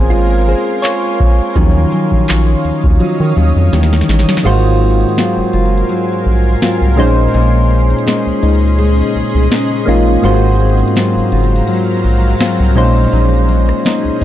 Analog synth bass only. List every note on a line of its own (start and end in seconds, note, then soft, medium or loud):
0.00 0.55 G#1 medium
1.56 1.86 D#2 loud
2.12 2.55 A#1 medium
2.65 2.72 D#2 soft
2.84 2.98 D#2 medium
3.20 3.34 D#3 loud
3.37 3.53 D#2 medium
3.56 3.70 F2 medium
3.73 4.03 D#2 loud
4.09 4.25 A1 loud
4.45 5.05 G#1 loud
5.37 5.43 F#1 soft
5.54 5.83 F#1 medium
6.26 6.56 A#1 medium
6.81 7.00 C2 medium
6.98 7.28 A#1 loud
7.34 7.94 A#1 loud
8.26 8.33 C#2 soft
8.43 9.03 C#2 medium
9.15 9.23 C2 soft
9.35 9.48 C2 medium
9.88 10.17 A1 loud
10.24 10.83 G#1 loud
11.16 11.22 F#1 soft
11.32 11.62 F#1 medium
12.04 12.34 A#1 medium
12.60 12.78 C2 medium
12.77 13.06 A#1 loud
13.13 13.73 A#1 loud
14.05 14.11 C#2 medium
14.21 14.24 C#2 medium